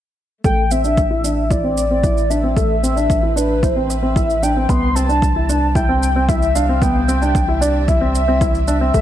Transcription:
0.44 4.67 A1 medium
0.44 0.61 A3 medium
0.44 4.70 A3 medium
0.44 0.73 G5 loud
0.44 kick medium
0.44 shaker soft
0.71 0.80 C4 medium
0.71 5.60 E4 medium
0.71 1.53 E5 loud
0.71 shaker medium
0.84 1.01 D4 medium
0.84 shaker soft
0.97 kick medium
0.97 shaker soft
1.11 1.19 E4 medium
1.24 1.41 D4 medium
1.24 shaker medium
1.51 1.59 E4 medium
1.51 1.77 D5 medium
1.51 kick medium
1.51 shaker soft
1.62 1.81 C4 medium
1.62 6.23 B4 medium
1.77 2.32 D5 medium
1.77 shaker soft
1.91 1.99 C4 medium
2.04 2.20 E4 medium
2.04 kick medium
2.04 shaker soft
2.18 shaker soft
2.30 2.39 D4 medium
2.30 5.76 C5 medium
2.30 2.56 E5 medium
2.30 shaker soft
2.43 2.52 C4 medium
2.57 2.73 A3 medium
2.57 3.39 E5 loud
2.57 kick medium
2.57 shaker soft
2.83 2.92 C4 medium
2.83 shaker medium
2.96 3.13 D4 medium
2.96 shaker soft
3.10 kick medium
3.10 shaker soft
3.23 3.31 E4 medium
3.36 3.53 D4 medium
3.36 3.65 B4 medium
3.36 shaker medium
3.63 3.71 E4 medium
3.63 3.91 C5 medium
3.63 kick medium
3.63 shaker soft
3.76 3.93 C4 medium
3.90 4.45 E5 loud
3.90 shaker medium
4.03 4.11 C4 medium
4.16 4.33 E4 medium
4.16 kick medium
4.16 shaker soft
4.30 shaker soft
4.43 4.51 D4 medium
4.43 4.71 G5 medium
4.43 shaker medium
4.56 4.65 C4 medium
4.69 8.91 C2 medium
4.69 4.86 B3 medium
4.69 9.01 C4 medium
4.69 4.97 C6 loud
4.69 kick medium
4.69 shaker soft
4.87 9.01 G4 medium
4.95 5.04 C4 medium
4.95 5.75 A5 loud
4.95 shaker medium
5.09 5.26 D4 medium
5.09 shaker soft
5.22 kick medium
5.22 shaker soft
5.36 5.44 E4 medium
5.36 9.01 D5 medium
5.49 5.66 D4 medium
5.49 shaker medium
5.75 5.84 E4 medium
5.75 6.30 G5 loud
5.75 kick medium
5.75 shaker soft
5.89 6.06 C4 medium
6.03 shaker medium
6.16 6.24 C4 medium
6.21 9.01 E5 medium
6.28 6.45 E4 medium
6.28 6.57 E5 medium
6.28 kick medium
6.28 shaker soft
6.42 shaker soft
6.55 6.64 D4 medium
6.55 6.83 F5 medium
6.55 shaker medium
6.69 6.77 C4 medium
6.82 6.99 B3 medium
6.82 7.61 G5 loud
6.82 kick loud
6.82 shaker soft
7.08 7.17 C4 medium
7.08 shaker medium
7.22 7.38 D4 medium
7.22 shaker soft
7.35 kick medium
7.35 shaker soft
7.48 7.57 E4 medium
7.61 7.78 D4 medium
7.61 7.90 D5 medium
7.61 shaker medium
7.88 7.96 E4 medium
7.88 8.67 E5 medium
7.88 kick medium
7.88 shaker soft
8.01 8.18 C4 medium
8.15 shaker medium
8.28 8.36 C4 medium
8.41 8.58 E4 medium
8.41 kick medium
8.41 shaker soft
8.55 shaker soft
8.68 8.76 D4 medium
8.68 9.01 E5 medium
8.68 shaker medium
8.81 8.89 C4 medium
8.94 9.01 A1 medium
8.94 9.01 A3 medium
8.94 kick medium
8.94 shaker soft

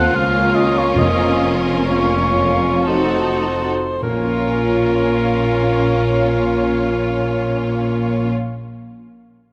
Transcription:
0.00 0.14 D#2 soft
0.00 0.15 D#2 soft
0.00 0.18 D#3 soft
0.00 0.12 A3 soft
0.00 0.18 A3 soft
0.00 0.15 C4 soft
0.00 0.17 C4 soft
0.00 0.13 F4 soft
0.00 0.66 F4 soft
0.00 2.87 F4 soft
0.00 0.11 A4 soft
0.00 0.17 A4 soft
0.00 0.17 C5 soft
0.00 0.17 F#5 medium
0.13 0.94 C#2 medium
0.13 0.95 C#2 medium
0.13 0.99 C#3 soft
0.13 0.95 A#3 soft
0.13 2.87 C#4 soft
0.13 0.95 F4 soft
0.13 2.87 A#4 soft
0.13 0.57 F5 medium
0.40 1.23 C#4 soft
0.56 0.80 D#5 medium
0.68 1.53 F4 soft
0.68 1.84 A#4 soft
0.78 0.98 C#5 soft
0.95 3.71 F1 soft
0.95 2.30 F2 soft
0.95 3.71 F2 soft
0.95 2.85 F3 soft
0.95 1.84 A#3 soft
0.95 1.84 F4 soft
0.95 1.53 D#5 medium
1.24 2.90 C#4 soft
1.54 4.22 F4 soft
1.85 2.85 A#3 soft
1.85 2.85 F4 soft
1.85 2.90 A#4 soft
1.85 2.89 C#5 medium
2.18 2.91 C#5 soft
2.51 4.36 F5 soft
2.86 6.76 F3 soft
2.86 3.52 A3 soft
2.86 3.71 D#4 soft
2.86 3.52 F#4 soft
2.86 3.70 F#4 soft
2.86 3.70 A4 soft
2.86 4.02 C5 soft
3.24 4.07 D#4 soft
3.63 4.07 F#4 soft
3.63 4.07 A4 soft
4.02 8.31 A#1 soft
4.02 8.65 A#2 soft
4.02 8.31 A#2 soft
4.02 8.30 C#4 soft
4.02 8.31 C#4 soft
4.02 8.31 F4 soft
4.02 8.32 F4 soft
4.02 8.31 A#4 soft
4.02 8.31 C#5 soft
4.09 8.72 A#3 soft
4.16 8.79 C#4 soft
4.23 8.86 F4 soft
4.30 8.93 A#4 soft
4.37 9.00 F5 soft

